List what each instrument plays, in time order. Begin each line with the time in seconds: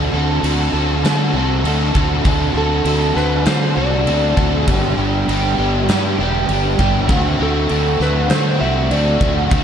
Already playing: fingered electric bass D2, overdriven electric guitar D3 C4 F#4 A4
0.13 fingered electric bass D2, overdriven electric guitar C4 F#4 A4
0.43 fingered electric bass D2, overdriven electric guitar D3 C4 F#4 A4, crash
0.73 fingered electric bass D2, overdriven electric guitar F#4 A4
0.77 overdriven electric guitar C4
1.03 overdriven electric guitar D3 C4 F#4 A4, fingered electric bass D3, snare, crash
1.33 fingered electric bass C2, overdriven electric guitar C4 F#4 A4
1.64 fingered electric bass D2, overdriven electric guitar D3 C4 F#4 A4, crash
1.94 fingered electric bass D2, overdriven electric guitar C4 F#4 A4, kick
2.24 fingered electric bass D2, overdriven electric guitar D3 C4 F#4 A4, kick, crash
2.54 fingered electric bass D2, overdriven electric guitar C4 F#4 A4, lead electric guitar A4
2.85 fingered electric bass D2, overdriven electric guitar D3 C4 F#4 A4, crash
3.15 fingered electric bass D2, overdriven electric guitar C4 F#4 A4, lead electric guitar B4, snare
3.45 overdriven electric guitar D3 C4 F#4 A4, fingered electric bass D3, lead electric guitar C5, snare, crash
3.76 fingered electric bass C2, overdriven electric guitar C4 F#4 A4, lead electric guitar D5
4.07 fingered electric bass D2, overdriven electric guitar D3 C4 F#4 A4, crash
4.36 fingered electric bass D2, overdriven electric guitar C4 F#4 A4, kick
4.67 fingered electric bass G1, overdriven electric guitar G2 D3 G3 B3 D4 G4, kick, crash
4.97 fingered electric bass G1, overdriven electric guitar G3 B3 D4 G4
5.28 fingered electric bass G1, overdriven electric guitar G3 B3 D4 G4, crash
5.58 fingered electric bass G1, overdriven electric guitar G3 B3 D4 G4
5.88 fingered electric bass G2, overdriven electric guitar G2 D3 G3 B3 D4, snare, crash
5.92 overdriven electric guitar G4
6.19 fingered electric bass E1, overdriven electric guitar G3 B3 D4 G4
6.49 fingered electric bass G1, overdriven electric guitar G3 B3 D4 G4, crash
6.79 fingered electric bass G1, overdriven electric guitar G3 B3 D4 G4, kick
7.08 fingered electric bass D2, overdriven electric guitar D3 A3 C4 F#4, kick, crash
7.39 fingered electric bass D2, overdriven electric guitar A3 C4 F#4, lead electric guitar A4
7.69 fingered electric bass D2, overdriven electric guitar D3 A3 C4 F#4, crash
8.00 fingered electric bass D2, overdriven electric guitar A3 C4 F#4, lead electric guitar B4, snare
8.29 overdriven electric guitar D3 A3 C4 F#4, fingered electric bass D3, lead electric guitar C5, snare, crash
8.60 fingered electric bass C2, overdriven electric guitar A3 C4 F#4, lead electric guitar E5
8.90 fingered electric bass D2, overdriven electric guitar D3 A3 C4 F#4, lead electric guitar D5, crash
9.20 fingered electric bass D2, overdriven electric guitar A3 C4 F#4, kick
9.50 fingered electric bass D2, overdriven electric guitar D3 A3 C4 F#4, kick, crash